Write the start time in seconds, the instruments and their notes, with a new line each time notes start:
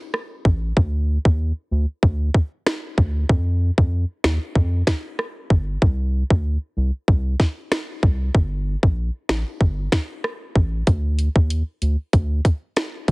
0.14 cross-stick
0.45 analog synth bass A1, kick
0.77 analog synth bass D2, kick
1.25 analog synth bass D#2, kick
1.71 analog synth bass D2
2.03 analog synth bass D2, kick
2.34 kick
2.67 finger snap, cross-stick, snare
2.98 analog synth bass D2, kick
3.29 analog synth bass F2, kick
3.78 analog synth bass F2, kick
4.24 analog synth bass D#2, finger snap, snare
4.55 analog synth bass F2, kick
4.87 finger snap, kick, snare
5.19 cross-stick
5.50 analog synth bass G1, kick
5.82 analog synth bass C2, kick
6.30 analog synth bass D2, kick
6.77 analog synth bass C2
7.08 analog synth bass C2, kick
7.40 kick, snare
7.72 finger snap, cross-stick, snare
8.03 analog synth bass C2, kick
8.35 analog synth bass G1, kick
8.83 analog synth bass A#1, kick
9.29 analog synth bass A1, finger snap, snare
9.61 analog synth bass G1, kick
9.92 finger snap, kick, snare
10.24 cross-stick
10.55 analog synth bass A1, kick
10.87 analog synth bass D2, kick, closed hi-hat
11.19 closed hi-hat
11.36 analog synth bass D#2, kick
11.50 closed hi-hat
11.82 analog synth bass D2, closed hi-hat
12.13 analog synth bass D2, kick, closed hi-hat
12.45 kick, closed hi-hat
12.76 finger snap, cross-stick, snare, closed hi-hat
13.08 analog synth bass D2, kick, closed hi-hat